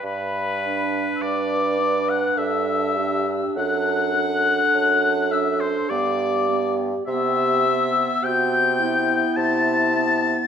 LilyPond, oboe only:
\new Staff \with { instrumentName = "Oboe" } { \time 3/4 \key g \major \tempo 4 = 52 b'4 d''8. fis''16 e''4 | fis''4. e''16 c''16 d''8. r16 | e''4 g''4 a''4 | }